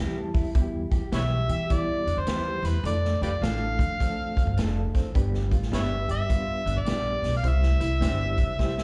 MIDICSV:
0, 0, Header, 1, 7, 480
1, 0, Start_track
1, 0, Tempo, 574713
1, 459, Time_signature, 4, 2, 24, 8
1, 7380, End_track
2, 0, Start_track
2, 0, Title_t, "Harmonica"
2, 0, Program_c, 0, 22
2, 957, Note_on_c, 0, 71, 66
2, 957, Note_on_c, 0, 73, 66
2, 957, Note_on_c, 0, 76, 94
2, 1010, Note_off_c, 0, 71, 0
2, 1030, Note_off_c, 0, 73, 0
2, 1234, Note_off_c, 0, 76, 0
2, 1271, Note_on_c, 0, 76, 98
2, 1439, Note_on_c, 0, 74, 92
2, 1451, Note_off_c, 0, 76, 0
2, 1838, Note_on_c, 0, 72, 94
2, 1850, Note_off_c, 0, 74, 0
2, 2217, Note_on_c, 0, 71, 88
2, 2229, Note_off_c, 0, 72, 0
2, 2385, Note_off_c, 0, 71, 0
2, 2393, Note_on_c, 0, 74, 103
2, 2672, Note_off_c, 0, 74, 0
2, 2697, Note_on_c, 0, 67, 65
2, 2697, Note_on_c, 0, 71, 65
2, 2697, Note_on_c, 0, 74, 93
2, 2754, Note_off_c, 0, 67, 0
2, 2761, Note_off_c, 0, 71, 0
2, 2873, Note_on_c, 0, 77, 107
2, 2886, Note_off_c, 0, 74, 0
2, 3827, Note_off_c, 0, 77, 0
2, 4797, Note_on_c, 0, 71, 65
2, 4797, Note_on_c, 0, 73, 65
2, 4797, Note_on_c, 0, 76, 93
2, 4850, Note_off_c, 0, 71, 0
2, 4852, Note_off_c, 0, 73, 0
2, 5075, Note_off_c, 0, 76, 0
2, 5104, Note_on_c, 0, 76, 105
2, 5672, Note_on_c, 0, 74, 102
2, 5685, Note_off_c, 0, 76, 0
2, 6142, Note_off_c, 0, 74, 0
2, 6153, Note_on_c, 0, 77, 91
2, 6249, Note_on_c, 0, 76, 110
2, 6261, Note_off_c, 0, 77, 0
2, 7380, Note_off_c, 0, 76, 0
2, 7380, End_track
3, 0, Start_track
3, 0, Title_t, "Clean electric guitar"
3, 0, Program_c, 1, 27
3, 0, Note_on_c, 1, 60, 69
3, 0, Note_on_c, 1, 64, 86
3, 0, Note_on_c, 1, 67, 86
3, 139, Note_off_c, 1, 60, 0
3, 142, Note_off_c, 1, 64, 0
3, 145, Note_off_c, 1, 67, 0
3, 935, Note_on_c, 1, 59, 83
3, 945, Note_on_c, 1, 64, 80
3, 949, Note_on_c, 1, 67, 81
3, 1096, Note_off_c, 1, 59, 0
3, 1101, Note_off_c, 1, 64, 0
3, 1103, Note_off_c, 1, 67, 0
3, 1899, Note_on_c, 1, 59, 90
3, 1906, Note_on_c, 1, 64, 87
3, 1916, Note_on_c, 1, 67, 95
3, 2058, Note_off_c, 1, 59, 0
3, 2062, Note_off_c, 1, 64, 0
3, 2067, Note_off_c, 1, 67, 0
3, 2854, Note_on_c, 1, 62, 79
3, 2864, Note_on_c, 1, 65, 82
3, 2868, Note_on_c, 1, 69, 102
3, 3016, Note_off_c, 1, 62, 0
3, 3021, Note_off_c, 1, 65, 0
3, 3023, Note_off_c, 1, 69, 0
3, 3815, Note_on_c, 1, 62, 78
3, 3825, Note_on_c, 1, 65, 91
3, 3830, Note_on_c, 1, 69, 85
3, 3977, Note_off_c, 1, 62, 0
3, 3982, Note_off_c, 1, 65, 0
3, 3984, Note_off_c, 1, 69, 0
3, 4772, Note_on_c, 1, 59, 81
3, 4777, Note_on_c, 1, 62, 84
3, 4786, Note_on_c, 1, 67, 88
3, 4935, Note_off_c, 1, 59, 0
3, 4937, Note_off_c, 1, 62, 0
3, 4942, Note_off_c, 1, 67, 0
3, 5724, Note_on_c, 1, 59, 88
3, 5734, Note_on_c, 1, 62, 89
3, 5740, Note_on_c, 1, 67, 93
3, 5891, Note_off_c, 1, 59, 0
3, 5896, Note_off_c, 1, 62, 0
3, 5899, Note_off_c, 1, 67, 0
3, 6687, Note_on_c, 1, 60, 83
3, 6694, Note_on_c, 1, 64, 79
3, 6703, Note_on_c, 1, 67, 96
3, 6852, Note_off_c, 1, 60, 0
3, 6855, Note_off_c, 1, 64, 0
3, 6860, Note_off_c, 1, 67, 0
3, 7380, End_track
4, 0, Start_track
4, 0, Title_t, "Clean electric guitar"
4, 0, Program_c, 2, 27
4, 285, Note_on_c, 2, 64, 88
4, 408, Note_off_c, 2, 64, 0
4, 458, Note_on_c, 2, 64, 81
4, 678, Note_off_c, 2, 64, 0
4, 762, Note_on_c, 2, 67, 93
4, 887, Note_off_c, 2, 67, 0
4, 1248, Note_on_c, 2, 67, 85
4, 1371, Note_off_c, 2, 67, 0
4, 1417, Note_on_c, 2, 64, 79
4, 1637, Note_off_c, 2, 64, 0
4, 1727, Note_on_c, 2, 62, 80
4, 1850, Note_off_c, 2, 62, 0
4, 1898, Note_on_c, 2, 59, 76
4, 2350, Note_off_c, 2, 59, 0
4, 2694, Note_on_c, 2, 65, 94
4, 2815, Note_off_c, 2, 65, 0
4, 2862, Note_on_c, 2, 62, 78
4, 3312, Note_off_c, 2, 62, 0
4, 3345, Note_on_c, 2, 60, 86
4, 3794, Note_off_c, 2, 60, 0
4, 4132, Note_on_c, 2, 60, 89
4, 4254, Note_off_c, 2, 60, 0
4, 4299, Note_on_c, 2, 67, 83
4, 4518, Note_off_c, 2, 67, 0
4, 4605, Note_on_c, 2, 65, 94
4, 4729, Note_off_c, 2, 65, 0
4, 5084, Note_on_c, 2, 67, 87
4, 5209, Note_off_c, 2, 67, 0
4, 5256, Note_on_c, 2, 65, 82
4, 5477, Note_off_c, 2, 65, 0
4, 5565, Note_on_c, 2, 62, 79
4, 5689, Note_off_c, 2, 62, 0
4, 5736, Note_on_c, 2, 59, 77
4, 6188, Note_off_c, 2, 59, 0
4, 6521, Note_on_c, 2, 64, 97
4, 6646, Note_off_c, 2, 64, 0
4, 6697, Note_on_c, 2, 62, 79
4, 7149, Note_off_c, 2, 62, 0
4, 7181, Note_on_c, 2, 60, 85
4, 7380, Note_off_c, 2, 60, 0
4, 7380, End_track
5, 0, Start_track
5, 0, Title_t, "Reed electric piano"
5, 0, Program_c, 3, 4
5, 0, Note_on_c, 3, 52, 86
5, 0, Note_on_c, 3, 55, 81
5, 0, Note_on_c, 3, 60, 83
5, 0, Note_on_c, 3, 64, 82
5, 0, Note_on_c, 3, 67, 97
5, 0, Note_on_c, 3, 79, 74
5, 122, Note_off_c, 3, 79, 0
5, 146, Note_on_c, 3, 81, 75
5, 385, Note_off_c, 3, 55, 0
5, 385, Note_off_c, 3, 60, 0
5, 386, Note_off_c, 3, 64, 0
5, 386, Note_off_c, 3, 67, 0
5, 387, Note_off_c, 3, 52, 0
5, 443, Note_off_c, 3, 81, 0
5, 459, Note_on_c, 3, 64, 73
5, 460, Note_on_c, 3, 59, 74
5, 461, Note_on_c, 3, 52, 78
5, 461, Note_on_c, 3, 55, 78
5, 461, Note_on_c, 3, 66, 69
5, 513, Note_on_c, 3, 67, 95
5, 529, Note_off_c, 3, 66, 0
5, 865, Note_off_c, 3, 64, 0
5, 866, Note_off_c, 3, 52, 0
5, 866, Note_off_c, 3, 55, 0
5, 866, Note_off_c, 3, 59, 0
5, 892, Note_off_c, 3, 67, 0
5, 950, Note_on_c, 3, 55, 70
5, 951, Note_on_c, 3, 59, 72
5, 951, Note_on_c, 3, 64, 72
5, 953, Note_on_c, 3, 67, 86
5, 956, Note_on_c, 3, 52, 79
5, 1351, Note_off_c, 3, 55, 0
5, 1351, Note_off_c, 3, 64, 0
5, 1352, Note_off_c, 3, 59, 0
5, 1352, Note_off_c, 3, 67, 0
5, 1354, Note_off_c, 3, 52, 0
5, 1420, Note_on_c, 3, 64, 69
5, 1422, Note_on_c, 3, 52, 70
5, 1423, Note_on_c, 3, 55, 70
5, 1423, Note_on_c, 3, 67, 77
5, 1424, Note_on_c, 3, 59, 68
5, 1826, Note_off_c, 3, 64, 0
5, 1827, Note_off_c, 3, 52, 0
5, 1828, Note_off_c, 3, 55, 0
5, 1828, Note_off_c, 3, 59, 0
5, 1828, Note_off_c, 3, 67, 0
5, 1898, Note_on_c, 3, 55, 69
5, 1899, Note_on_c, 3, 67, 86
5, 1901, Note_on_c, 3, 59, 68
5, 1903, Note_on_c, 3, 64, 68
5, 1904, Note_on_c, 3, 52, 72
5, 2305, Note_off_c, 3, 55, 0
5, 2306, Note_off_c, 3, 67, 0
5, 2307, Note_off_c, 3, 59, 0
5, 2308, Note_off_c, 3, 52, 0
5, 2308, Note_off_c, 3, 64, 0
5, 2379, Note_on_c, 3, 53, 73
5, 2382, Note_on_c, 3, 62, 64
5, 2383, Note_on_c, 3, 69, 78
5, 2384, Note_on_c, 3, 57, 67
5, 2384, Note_on_c, 3, 64, 55
5, 2434, Note_on_c, 3, 65, 68
5, 2451, Note_off_c, 3, 64, 0
5, 2786, Note_off_c, 3, 53, 0
5, 2787, Note_off_c, 3, 62, 0
5, 2788, Note_off_c, 3, 57, 0
5, 2788, Note_off_c, 3, 69, 0
5, 2813, Note_off_c, 3, 65, 0
5, 2866, Note_on_c, 3, 57, 73
5, 2866, Note_on_c, 3, 69, 85
5, 2868, Note_on_c, 3, 53, 76
5, 2868, Note_on_c, 3, 62, 71
5, 2872, Note_on_c, 3, 65, 76
5, 3270, Note_off_c, 3, 57, 0
5, 3270, Note_off_c, 3, 62, 0
5, 3270, Note_off_c, 3, 69, 0
5, 3271, Note_off_c, 3, 53, 0
5, 3273, Note_off_c, 3, 65, 0
5, 3349, Note_on_c, 3, 53, 80
5, 3349, Note_on_c, 3, 65, 70
5, 3350, Note_on_c, 3, 62, 71
5, 3351, Note_on_c, 3, 57, 70
5, 3352, Note_on_c, 3, 69, 89
5, 3751, Note_off_c, 3, 53, 0
5, 3751, Note_off_c, 3, 62, 0
5, 3751, Note_off_c, 3, 65, 0
5, 3752, Note_off_c, 3, 57, 0
5, 3752, Note_off_c, 3, 69, 0
5, 3825, Note_on_c, 3, 62, 85
5, 3828, Note_on_c, 3, 53, 86
5, 3828, Note_on_c, 3, 57, 82
5, 3828, Note_on_c, 3, 65, 81
5, 3828, Note_on_c, 3, 68, 78
5, 3880, Note_on_c, 3, 69, 98
5, 3894, Note_off_c, 3, 68, 0
5, 4229, Note_off_c, 3, 62, 0
5, 4230, Note_off_c, 3, 65, 0
5, 4231, Note_off_c, 3, 53, 0
5, 4231, Note_off_c, 3, 57, 0
5, 4257, Note_off_c, 3, 69, 0
5, 4303, Note_on_c, 3, 55, 88
5, 4304, Note_on_c, 3, 59, 77
5, 4304, Note_on_c, 3, 62, 81
5, 4304, Note_on_c, 3, 67, 79
5, 4308, Note_on_c, 3, 71, 91
5, 4708, Note_off_c, 3, 55, 0
5, 4708, Note_off_c, 3, 59, 0
5, 4708, Note_off_c, 3, 62, 0
5, 4708, Note_off_c, 3, 67, 0
5, 4710, Note_off_c, 3, 71, 0
5, 4782, Note_on_c, 3, 59, 75
5, 4783, Note_on_c, 3, 67, 71
5, 4784, Note_on_c, 3, 55, 79
5, 4784, Note_on_c, 3, 62, 69
5, 4788, Note_on_c, 3, 70, 68
5, 4842, Note_on_c, 3, 71, 88
5, 4853, Note_off_c, 3, 70, 0
5, 5187, Note_off_c, 3, 59, 0
5, 5188, Note_off_c, 3, 55, 0
5, 5188, Note_off_c, 3, 62, 0
5, 5188, Note_off_c, 3, 67, 0
5, 5217, Note_off_c, 3, 71, 0
5, 5255, Note_on_c, 3, 59, 68
5, 5258, Note_on_c, 3, 62, 70
5, 5258, Note_on_c, 3, 67, 74
5, 5258, Note_on_c, 3, 71, 85
5, 5261, Note_on_c, 3, 55, 78
5, 5663, Note_off_c, 3, 59, 0
5, 5665, Note_off_c, 3, 62, 0
5, 5665, Note_off_c, 3, 67, 0
5, 5665, Note_off_c, 3, 71, 0
5, 5667, Note_off_c, 3, 55, 0
5, 5738, Note_on_c, 3, 62, 67
5, 5739, Note_on_c, 3, 55, 74
5, 5740, Note_on_c, 3, 59, 68
5, 5740, Note_on_c, 3, 67, 64
5, 5740, Note_on_c, 3, 71, 78
5, 6145, Note_off_c, 3, 55, 0
5, 6145, Note_off_c, 3, 62, 0
5, 6146, Note_off_c, 3, 59, 0
5, 6146, Note_off_c, 3, 67, 0
5, 6146, Note_off_c, 3, 71, 0
5, 6216, Note_on_c, 3, 67, 65
5, 6218, Note_on_c, 3, 60, 66
5, 6218, Note_on_c, 3, 72, 80
5, 6219, Note_on_c, 3, 55, 70
5, 6219, Note_on_c, 3, 64, 63
5, 6624, Note_off_c, 3, 60, 0
5, 6624, Note_off_c, 3, 67, 0
5, 6625, Note_off_c, 3, 55, 0
5, 6625, Note_off_c, 3, 64, 0
5, 6625, Note_off_c, 3, 72, 0
5, 6697, Note_on_c, 3, 64, 68
5, 6700, Note_on_c, 3, 55, 79
5, 6701, Note_on_c, 3, 60, 76
5, 6702, Note_on_c, 3, 72, 89
5, 6704, Note_on_c, 3, 67, 67
5, 7003, Note_on_c, 3, 76, 66
5, 7104, Note_off_c, 3, 64, 0
5, 7105, Note_off_c, 3, 55, 0
5, 7106, Note_off_c, 3, 60, 0
5, 7106, Note_off_c, 3, 72, 0
5, 7108, Note_off_c, 3, 67, 0
5, 7165, Note_off_c, 3, 76, 0
5, 7175, Note_on_c, 3, 55, 93
5, 7177, Note_on_c, 3, 60, 80
5, 7177, Note_on_c, 3, 72, 97
5, 7178, Note_on_c, 3, 64, 82
5, 7178, Note_on_c, 3, 79, 72
5, 7180, Note_on_c, 3, 67, 86
5, 7380, Note_off_c, 3, 55, 0
5, 7380, Note_off_c, 3, 60, 0
5, 7380, Note_off_c, 3, 64, 0
5, 7380, Note_off_c, 3, 67, 0
5, 7380, Note_off_c, 3, 72, 0
5, 7380, Note_off_c, 3, 79, 0
5, 7380, End_track
6, 0, Start_track
6, 0, Title_t, "Upright bass"
6, 0, Program_c, 4, 32
6, 0, Note_on_c, 4, 40, 95
6, 244, Note_off_c, 4, 40, 0
6, 285, Note_on_c, 4, 39, 91
6, 360, Note_off_c, 4, 39, 0
6, 459, Note_on_c, 4, 40, 115
6, 723, Note_off_c, 4, 40, 0
6, 762, Note_on_c, 4, 40, 83
6, 913, Note_off_c, 4, 40, 0
6, 938, Note_on_c, 4, 35, 101
6, 1203, Note_off_c, 4, 35, 0
6, 1245, Note_on_c, 4, 52, 94
6, 1527, Note_off_c, 4, 52, 0
6, 1730, Note_on_c, 4, 40, 88
6, 1803, Note_off_c, 4, 40, 0
6, 1811, Note_on_c, 4, 41, 78
6, 1886, Note_off_c, 4, 41, 0
6, 1895, Note_on_c, 4, 39, 91
6, 2162, Note_off_c, 4, 39, 0
6, 2194, Note_on_c, 4, 40, 92
6, 2349, Note_off_c, 4, 40, 0
6, 2369, Note_on_c, 4, 41, 107
6, 2638, Note_off_c, 4, 41, 0
6, 2684, Note_on_c, 4, 41, 93
6, 2835, Note_off_c, 4, 41, 0
6, 2853, Note_on_c, 4, 33, 95
6, 3165, Note_on_c, 4, 53, 92
6, 3177, Note_off_c, 4, 33, 0
6, 3448, Note_off_c, 4, 53, 0
6, 3648, Note_on_c, 4, 41, 91
6, 3722, Note_off_c, 4, 41, 0
6, 3730, Note_on_c, 4, 43, 89
6, 3806, Note_off_c, 4, 43, 0
6, 3820, Note_on_c, 4, 29, 90
6, 4085, Note_off_c, 4, 29, 0
6, 4130, Note_on_c, 4, 30, 102
6, 4278, Note_off_c, 4, 30, 0
6, 4301, Note_on_c, 4, 31, 104
6, 4565, Note_off_c, 4, 31, 0
6, 4603, Note_on_c, 4, 33, 97
6, 4754, Note_off_c, 4, 33, 0
6, 4775, Note_on_c, 4, 31, 94
6, 5042, Note_off_c, 4, 31, 0
6, 5083, Note_on_c, 4, 43, 83
6, 5366, Note_off_c, 4, 43, 0
6, 5561, Note_on_c, 4, 31, 94
6, 5638, Note_off_c, 4, 31, 0
6, 5642, Note_on_c, 4, 33, 82
6, 5719, Note_off_c, 4, 33, 0
6, 5724, Note_on_c, 4, 34, 86
6, 5995, Note_off_c, 4, 34, 0
6, 6032, Note_on_c, 4, 35, 92
6, 6187, Note_off_c, 4, 35, 0
6, 6209, Note_on_c, 4, 36, 109
6, 6478, Note_off_c, 4, 36, 0
6, 6517, Note_on_c, 4, 36, 98
6, 6686, Note_on_c, 4, 31, 96
6, 6699, Note_off_c, 4, 36, 0
6, 6956, Note_off_c, 4, 31, 0
6, 6999, Note_on_c, 4, 48, 90
6, 7283, Note_off_c, 4, 48, 0
6, 7380, End_track
7, 0, Start_track
7, 0, Title_t, "Drums"
7, 287, Note_on_c, 9, 46, 52
7, 289, Note_on_c, 9, 36, 90
7, 370, Note_off_c, 9, 46, 0
7, 372, Note_off_c, 9, 36, 0
7, 458, Note_on_c, 9, 42, 83
7, 460, Note_on_c, 9, 36, 104
7, 541, Note_off_c, 9, 42, 0
7, 543, Note_off_c, 9, 36, 0
7, 765, Note_on_c, 9, 36, 93
7, 769, Note_on_c, 9, 42, 74
7, 848, Note_off_c, 9, 36, 0
7, 853, Note_off_c, 9, 42, 0
7, 939, Note_on_c, 9, 38, 98
7, 939, Note_on_c, 9, 42, 100
7, 1023, Note_off_c, 9, 38, 0
7, 1023, Note_off_c, 9, 42, 0
7, 1246, Note_on_c, 9, 42, 63
7, 1330, Note_off_c, 9, 42, 0
7, 1420, Note_on_c, 9, 42, 93
7, 1422, Note_on_c, 9, 36, 92
7, 1504, Note_off_c, 9, 42, 0
7, 1506, Note_off_c, 9, 36, 0
7, 1732, Note_on_c, 9, 42, 70
7, 1815, Note_off_c, 9, 42, 0
7, 1893, Note_on_c, 9, 42, 87
7, 1905, Note_on_c, 9, 38, 105
7, 1976, Note_off_c, 9, 42, 0
7, 1989, Note_off_c, 9, 38, 0
7, 2210, Note_on_c, 9, 38, 35
7, 2210, Note_on_c, 9, 42, 78
7, 2293, Note_off_c, 9, 42, 0
7, 2294, Note_off_c, 9, 38, 0
7, 2382, Note_on_c, 9, 42, 79
7, 2465, Note_off_c, 9, 42, 0
7, 2544, Note_on_c, 9, 38, 35
7, 2628, Note_off_c, 9, 38, 0
7, 2696, Note_on_c, 9, 42, 80
7, 2779, Note_off_c, 9, 42, 0
7, 2868, Note_on_c, 9, 38, 100
7, 2868, Note_on_c, 9, 42, 103
7, 2952, Note_off_c, 9, 38, 0
7, 2952, Note_off_c, 9, 42, 0
7, 3166, Note_on_c, 9, 36, 90
7, 3174, Note_on_c, 9, 42, 66
7, 3249, Note_off_c, 9, 36, 0
7, 3257, Note_off_c, 9, 42, 0
7, 3344, Note_on_c, 9, 36, 94
7, 3348, Note_on_c, 9, 42, 94
7, 3428, Note_off_c, 9, 36, 0
7, 3432, Note_off_c, 9, 42, 0
7, 3649, Note_on_c, 9, 36, 91
7, 3657, Note_on_c, 9, 42, 70
7, 3732, Note_off_c, 9, 36, 0
7, 3741, Note_off_c, 9, 42, 0
7, 3820, Note_on_c, 9, 42, 88
7, 3833, Note_on_c, 9, 38, 106
7, 3904, Note_off_c, 9, 42, 0
7, 3916, Note_off_c, 9, 38, 0
7, 4132, Note_on_c, 9, 36, 93
7, 4136, Note_on_c, 9, 38, 34
7, 4136, Note_on_c, 9, 42, 75
7, 4216, Note_off_c, 9, 36, 0
7, 4219, Note_off_c, 9, 42, 0
7, 4220, Note_off_c, 9, 38, 0
7, 4303, Note_on_c, 9, 36, 106
7, 4306, Note_on_c, 9, 42, 82
7, 4386, Note_off_c, 9, 36, 0
7, 4389, Note_off_c, 9, 42, 0
7, 4460, Note_on_c, 9, 38, 37
7, 4543, Note_off_c, 9, 38, 0
7, 4606, Note_on_c, 9, 36, 88
7, 4610, Note_on_c, 9, 42, 76
7, 4690, Note_off_c, 9, 36, 0
7, 4693, Note_off_c, 9, 42, 0
7, 4696, Note_on_c, 9, 38, 38
7, 4780, Note_off_c, 9, 38, 0
7, 4787, Note_on_c, 9, 38, 96
7, 4787, Note_on_c, 9, 42, 100
7, 4870, Note_off_c, 9, 38, 0
7, 4871, Note_off_c, 9, 42, 0
7, 5088, Note_on_c, 9, 42, 63
7, 5171, Note_off_c, 9, 42, 0
7, 5261, Note_on_c, 9, 36, 99
7, 5261, Note_on_c, 9, 42, 94
7, 5344, Note_off_c, 9, 36, 0
7, 5344, Note_off_c, 9, 42, 0
7, 5572, Note_on_c, 9, 42, 68
7, 5655, Note_off_c, 9, 42, 0
7, 5731, Note_on_c, 9, 42, 90
7, 5744, Note_on_c, 9, 38, 103
7, 5815, Note_off_c, 9, 42, 0
7, 5827, Note_off_c, 9, 38, 0
7, 6045, Note_on_c, 9, 38, 34
7, 6045, Note_on_c, 9, 46, 52
7, 6128, Note_off_c, 9, 46, 0
7, 6129, Note_off_c, 9, 38, 0
7, 6212, Note_on_c, 9, 42, 84
7, 6296, Note_off_c, 9, 42, 0
7, 6371, Note_on_c, 9, 38, 36
7, 6455, Note_off_c, 9, 38, 0
7, 6521, Note_on_c, 9, 42, 75
7, 6605, Note_off_c, 9, 42, 0
7, 6698, Note_on_c, 9, 38, 95
7, 6699, Note_on_c, 9, 42, 99
7, 6782, Note_off_c, 9, 38, 0
7, 6782, Note_off_c, 9, 42, 0
7, 6998, Note_on_c, 9, 36, 87
7, 6999, Note_on_c, 9, 42, 63
7, 7082, Note_off_c, 9, 36, 0
7, 7083, Note_off_c, 9, 42, 0
7, 7176, Note_on_c, 9, 36, 90
7, 7178, Note_on_c, 9, 38, 65
7, 7260, Note_off_c, 9, 36, 0
7, 7261, Note_off_c, 9, 38, 0
7, 7332, Note_on_c, 9, 38, 58
7, 7380, Note_off_c, 9, 38, 0
7, 7380, End_track
0, 0, End_of_file